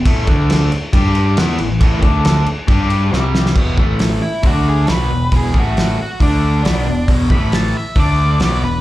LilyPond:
<<
  \new Staff \with { instrumentName = "Lead electric guitar" } { \time 4/4 \key d \lydian \tempo 4 = 136 r1 | r1 | r4. e'8 fis'8 gis'8 b'4 | gis'8 fis'8 fis'8 fis'8 d'2 |
r8 b''8 a''8 e''8 d''4. b'8 | }
  \new Staff \with { instrumentName = "Distorted electric guitar" } { \clef bass \time 4/4 \key d \lydian <a, e a>8 <d a d'>4 r8 <g d' g'>4 <e b e'>8 <a, e>8 | <a, e a>8 <d a d'>4 r8 <g d' g'>4 <c g c'>4 | <e, b, e>8 <a, e a>4 r8 <d a d'>4 <b, fis b>8 <e, b,>8 | <e, b, e>8 <a, e a>4 r8 <d a d'>4 <b, fis b>8 <e, b,>8 |
<e, b, e>8 <a, e a>4 r8 <d a d'>4 <b, fis b>8 <e, b,>8 | }
  \new Staff \with { instrumentName = "Picked electric bass" } { \clef bass \time 4/4 \key d \lydian a,,8 d,4 r8 g,4 e,8 a,,8 | a,,8 d,4 r8 g,4 c,4 | e,,8 a,,4 r8 d,4 b,,8 e,,8 | e,,8 a,,4 r8 d,4 b,,8 e,,8 |
e,,8 a,,4 r8 d,4 b,,8 e,,8 | }
  \new DrumStaff \with { instrumentName = "Drums" } \drummode { \time 4/4 <cymc bd>8 <cymc bd>8 <cymc sn>8 cymc8 <cymc bd>8 cymc8 <cymc sn>8 cymc8 | <cymc bd>8 <cymc bd>8 <cymc sn>8 cymc8 <cymc bd>8 cymc8 sn8 sn16 sn16 | <cymc bd>8 bd8 <hho sn>4 <hho bd>4 <hho sn>4 | <hho bd>8 bd8 <hho sn>4 <hho bd>4 <hho sn>4 |
<hho bd>8 bd8 <hho sn>4 <hho bd>4 <hho sn>4 | }
>>